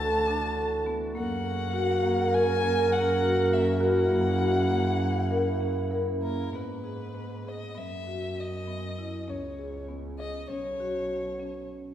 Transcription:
Already playing: D2 E3 D4 F#4 A4 A5
0.00 A4
0.28 D4
0.57 A4
0.86 B3
1.15 F#2 C#3 A#3 A#4 F#5
1.74 F#4
2.03 A#3
2.33 A#4 G#5
2.63 A#3
2.93 F#5
3.21 F#4
3.51 A#3 E5
3.81 E4 F#4 F#5
4.10 A#3
4.40 F#4
4.70 A#3
5.31 A#4
5.61 C#4
5.91 A#4
6.22 A#3 A#4
6.52 G#2 B3 B4
6.84 G#4
7.14 B3
7.45 G#4 D#5
7.75 F#2 B3 E5
8.07 F#4
8.40 D#5
8.67 B3
8.98 E4
9.28 C#2 C#4 C#5
9.59 G#4
9.88 B3
10.19 G#4 D#5
10.49 B1 C#4 C#5
10.80 F#4
11.39 C#4

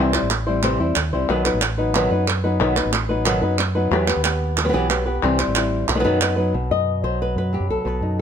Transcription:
Already playing: C2 C3 E3
0.00 G3 C4 E4 C5
0.13 G3 C4 E4 C5, clap
0.22 A1
0.30 muted nylon-string guitar stroke, clap
0.47 G3 C4 E4 C5
0.63 C3 E3 G3 C4 E4 C5, clap
0.79 E2 G3 C4 E4 C5
0.96 D#2, muted nylon-string guitar stroke, clap
1.12 C2 G3 C4 E4 C5
1.29 B1 B2 D#3 F#3 B3 D#4 B4
1.45 F#3 B3 D#4 B4, clap
1.54 A1
1.62 muted nylon-string guitar stroke, clap
1.78 F#3 B3 D#4 B4
1.94 B2 D#3 F#3 B3 D#4 B4, clap
2.11 F#2 F#3 B3 D#4 B4
2.27 muted nylon-string guitar stroke, clap
2.44 F#3 B3 D#4 B4
2.60 B1 B2 D#3 F#3 B3 D#4 B4
2.76 F#3 B3 D#4 B4, clap
2.85 A1
2.93 muted nylon-string guitar stroke, clap
3.09 F#3 B3 D#4 B4
3.25 B2 D#3 F#3 B3 D#4 B4, clap
3.42 F#2 F#3 B3 D#4 B4
3.59 muted nylon-string guitar stroke, clap
3.75 F#3 B3 D#4 B4
3.91 E2 E3 F#3 B3 G4 B4
4.07 B3 G4 B4, clap
4.16 D#2
4.24 B3 G4 B4, clap
4.57 muted nylon-string guitar stroke, clap
4.64 F#3 B3 G4 B4
4.69 F#3 B3 G4 B4
4.73 B1 E3 F#3 B3 G4 B4
4.89 F#3 B3 G4 B4, clap
5.06 B3 G4 B4
5.23 C2 C3 E3 G3 C4 E4 C5
5.39 G3 C4 E4 C5, clap
5.47 A1
5.55 G3 C4 E4 C5, clap
5.88 B1, muted nylon-string guitar stroke, clap
5.95 D#3 F#3 B3 D#4 B4
5.99 D#3 F#3 B3 D#4 B4
6.04 F#2 B2 D#3 F#3 B3 D#4 B4
6.21 F#3 B3 D#4 B4, clap
6.36 F#3 B3 D#4 B4
6.54 B1 B2
6.71 F#2 D#5
7.03 B1 F#3 C5
7.22 B4
7.36 F#2 B4
7.53 F#3 G4
7.60 F#2
7.69 B1 A4
7.85 B1 B2 B4
8.01 F#2 D#4

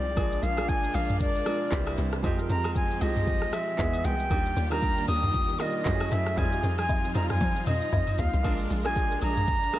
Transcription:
Already playing: C2 F3 G#3 C4 D#4 F4 G4 G#4 D5
0.15 A#1 F3 G#3 A#3 D4 G#4, kick, high agogo, shaker
0.32 shaker
0.42 A#1 F5, open hi-hat, shaker
0.56 F3 G#3 A#3 D4 G#4, cross-stick, high agogo, shaker
0.69 G#5, kick, shaker
0.84 shaker
0.94 A#1 F5, open hi-hat, high agogo, shaker
1.09 mid tom, shaker
1.20 D5, kick, shaker
1.35 shaker
1.45 F3 G#3 A#3 D4 A#4, cross-stick, open hi-hat, high agogo, shaker
1.71 C2 C3 E3 G3 A#3 C4 E4 G4, kick, clap, shaker
1.87 cross-stick, high agogo, shaker
1.98 C2, open hi-hat, shaker
2.12 cross-stick, shaker
2.22 F2 F3 G#3 C4 D#4 G4, kick, high agogo, shaker
2.37 F3 G#3 C4 D#4 A#4, shaker
2.50 F2 A#5, open hi-hat, shaker
2.64 cross-stick, high agogo, shaker
2.75 G#5, kick, shaker
2.91 shaker
3.00 C2 F3 G#3 C4 D#4 G4 D#5, open hi-hat, high agogo, shaker
3.16 mid tom, shaker
3.27 kick, shaker
3.42 cross-stick, shaker
3.53 E5, cross-stick, open hi-hat, high agogo, shaker
3.77 E2 E3 G#3 B3 D#4 F#4 G#4, kick, clap, shaker
3.93 high agogo, shaker
4.04 C2 G5, open hi-hat, shaker
4.19 shaker
4.29 D#2 D#3 G3 A#3 D4 F4 G4, kick, high agogo, shaker
4.46 shaker
4.56 D#2, open hi-hat, shaker
4.70 D#3 G3 A#3 D4 A#4 A#5, cross-stick, high agogo, shaker
4.82 kick, shaker
4.98 shaker
5.08 D#2 D#6, open hi-hat, high agogo, shaker
5.23 mid tom, shaker
5.34 kick, shaker
5.49 shaker
5.58 D#3 G3 A#3 D4 F4 D#5, cross-stick, open hi-hat, high agogo, shaker
5.84 F#2 F#3 A3 C#4 E4 G4, kick, clap, shaker
5.94 G#4
6.00 cross-stick, high agogo, shaker
6.11 F#2 E5, open hi-hat, shaker
6.26 cross-stick, shaker
6.36 F2 F3 G3 C4 D#4 F4 G#4 G#5, kick, high agogo, shaker
6.51 C4 D#4 F4 G4, shaker
6.61 F2 G#4, open hi-hat, shaker
6.78 G#5, cross-stick, high agogo, shaker
6.89 kick, low woodblock, shaker
7.04 shaker
7.14 F2 G3 C4 D#4 F4 A#5, open hi-hat, high agogo, shaker
7.30 G#5, cross-stick, mid tom, shaker
7.41 F3, kick, high tom, shaker
7.56 shaker
7.66 F2 D#5, open hi-hat, mid tom, high agogo, shaker
7.82 shaker
7.93 F2, kick, mid tom, low woodblock, shaker
8.07 mid tom, high agogo, shaker
8.18 D#2 F5, floor tom, open hi-hat, shaker
8.33 C2, floor tom, shaker
8.43 A#1 G#3 A#3 D4 F4 A#4, kick, crash, high agogo
8.60 shaker
8.70 A#1, open hi-hat, shaker
8.84 G#3 A#3 D4 F4 G4 G#5, cross-stick, high agogo, shaker
8.93 G#4, kick, shaker
9.11 shaker
9.22 A#1 A#5, open hi-hat, high agogo, shaker
9.37 mid tom, shaker
9.48 kick, shaker
9.63 shaker
9.72 G#3 A#3 D4 F4 G#4, cross-stick, open hi-hat, high agogo, shaker

